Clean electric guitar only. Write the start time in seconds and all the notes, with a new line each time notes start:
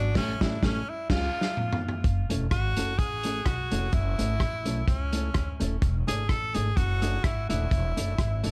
0.15 A3 C#4 E4 A4
0.41 A3 C#4 E4 A4
0.62 A3 C#4 E4 A4
1.10 G#3 C#4 F4 G#4
2.30 A3 C#4 E4 A4
2.77 A3 C#4 E4 A4
3.25 A3 C#4 E4 A4
3.72 A3 C#4 E4 A4
4.18 A3 C#4 E4 A4
4.65 A3 C#4 E4 A4
5.13 A3 C#4 E4 A4
5.60 A3 C#4 E4 A4
6.07 A3 D4 E4 A4
6.54 A3 D4 E4 A4
7.02 A3 D4 E4 A4
7.49 A3 D4 E4 A4
7.97 A3 D4 E4 A4
8.43 A3 D4 E4 A4